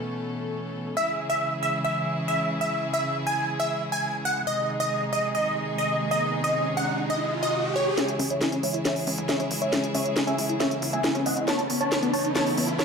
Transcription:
Already playing: B2 E3 A3 C#4 A4
0.97 C#3 E3 G#3 E4 G#4 E5
1.30 E5
1.63 E5
1.84 E5
2.28 E5
2.61 E5
2.94 E5
3.27 G#5
3.60 E5
3.92 G#5
4.25 F#5
4.47 C3 D#3 D#4 G#4 D#5, riser
4.80 D#5
5.13 D#5
5.35 D#5
5.78 D#5
6.11 D#5
6.44 D#5
6.77 F#5
7.10 D#5
7.43 D#5
7.76 C#5
7.97 C#3 E3 G#3 C#4 E4 G#4 C#5 E5, snare, closed hi-hat, riser
8.08 closed hi-hat
8.19 C#2 C#4, open hi-hat
8.30 C#5 E5, closed hi-hat
8.41 E4, snare, closed hi-hat
8.52 C#4, closed hi-hat
8.63 C#2 C#5 E5, open hi-hat
8.74 E4, closed hi-hat
8.85 C#4 C#5 E5, snare, closed hi-hat
8.96 open hi-hat
9.07 C#2 C#4, open hi-hat
9.18 C#2, closed hi-hat
9.29 E4 C#5 E5, snare, closed hi-hat
9.40 C#4, closed hi-hat
9.51 G#1, open hi-hat
9.62 E4 C#5 E5, closed hi-hat
9.73 C#4, snare, closed hi-hat
9.84 closed hi-hat
9.94 C#2 C#4 C#5 E5, open hi-hat
10.06 closed hi-hat
10.16 E4, snare, closed hi-hat
10.27 C#4 E5 G#5, closed hi-hat
10.38 C#2, open hi-hat
10.49 E4, closed hi-hat
10.60 C#4 C#5 E5, snare, closed hi-hat
10.71 closed hi-hat
10.82 C#2 C#4, open hi-hat
10.93 C#2 E5 G#5, closed hi-hat
11.04 E4, snare, closed hi-hat
11.15 C#4, closed hi-hat
11.26 G#1 D#5 F#5, open hi-hat
11.37 E4, closed hi-hat
11.48 E3 A3 B3 E4 C#5 A5, snare, closed hi-hat
11.59 closed hi-hat
11.70 A1 B3, open hi-hat
11.81 C#5 A5, closed hi-hat
11.92 C#4, snare, closed hi-hat
12.03 B3, closed hi-hat
12.13 A1 C#5 A5, open hi-hat
12.25 C#4, closed hi-hat
12.35 B3 C#5 A5, snare, closed hi-hat
12.47 open hi-hat
12.57 A1 B3, open hi-hat
12.68 A1, closed hi-hat
12.79 C#4 C#5 A5, snare, closed hi-hat

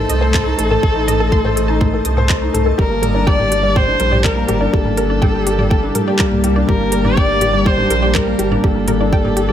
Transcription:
Already playing: A3 D#4 A4 C5 D#5 A5
0.09 C2 A3 D#5, closed hi-hat
0.21 C5 A5
0.34 A3 C6, kick, clap, mid tom
0.46 D#4
0.58 A1 A3 A4, closed hi-hat
0.70 A4 A5, mid tom
0.82 A1 A3 A4, kick
0.95 D#4
1.07 A3 D#5, closed hi-hat, mid tom
1.20 A4 A5
1.32 A3 C6, kick
1.45 C5, mid tom
1.56 A3 A4, closed hi-hat
1.68 D#4 A5
1.81 A3 C6, kick, mid tom
1.93 A4
2.05 C2 A3 D#6, closed hi-hat
2.17 A4 C5, mid tom
2.29 A3 C6, kick, clap
2.42 D#4
2.54 C2 A3 A4, closed hi-hat, mid tom
2.66 A4
2.78 G1 G3 G4 A#4, kick
2.89 A#3 G4
3.02 G3 A#4, closed hi-hat, mid tom
3.14 D4 D5
3.27 G3 D5 G5, kick
3.39 A#3 G4, mid tom
3.50 G3 G4, closed hi-hat
3.63 G3 D5
3.75 G3 C5 G5, kick, mid tom
3.87 D4
4.00 A#1 G3 A#4, closed hi-hat
4.11 G4 D5, mid tom
4.24 G3 A#4, kick, clap
4.36 A#3
4.48 G1 G3 G4, closed hi-hat, mid tom
4.61 D4 D5
4.73 G1 G3 G4 A4, kick
4.85 A#3, mid tom
4.97 G3 A#4, closed hi-hat
5.10 D4 D5
5.22 G3 G5, kick, mid tom
5.35 G4
5.47 G3 G4, closed hi-hat
5.58 G3 D5, mid tom
5.70 G3 G5, kick
5.83 D4
5.95 G3 A#4, closed hi-hat, mid tom
6.07 G4 D5
6.19 G3 A#4, kick, clap
6.31 C2 A#3, mid tom
6.43 G3 G4, closed hi-hat
6.56 D4 D5
6.67 G1 G3 G4 A#4, kick, mid tom
6.80 A#3
6.92 G3 A#4, closed hi-hat
7.05 D4 D5, mid tom
7.17 G3 D5 G5, kick
7.29 G4
7.41 G3 G4, closed hi-hat, mid tom
7.53 G3 D5
7.65 G3 C5 G5, kick
7.78 D4, mid tom
7.90 A#1 G3 A#4, closed hi-hat
8.02 G4 D5
8.15 G3 A#4, kick, clap, mid tom
8.27 A#3
8.39 G1 G3 G4, closed hi-hat
8.51 D4 D5, mid tom
8.63 G1 G3 G4 A4, kick
8.75 A#3
8.88 G3 A#4, closed hi-hat, mid tom
9.01 D4 D5
9.13 G3 G5, kick
9.24 G4, mid tom
9.37 G3 G4, closed hi-hat
9.49 G3 D5

